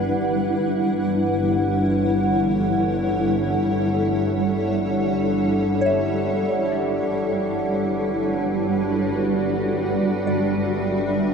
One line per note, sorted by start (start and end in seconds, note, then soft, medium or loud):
0.00 0.13 G1 medium
0.00 0.19 G3 medium
0.00 11.34 G3 medium
0.00 0.19 D4 medium
0.00 11.34 D4 medium
0.00 8.21 E4 medium
0.00 2.70 B4 medium
0.00 9.26 F#5 medium
0.18 7.00 G1 medium
0.18 11.34 G3 medium
1.22 8.61 C#5 medium
1.89 9.79 A4 medium
5.81 7.42 C#5 medium
5.86 7.45 E5 soft
7.03 11.34 G1 medium
7.45 11.34 B4 medium
7.77 11.34 D4 medium
8.18 11.34 F#4 medium
10.12 11.34 E5 medium
10.27 11.34 D5 soft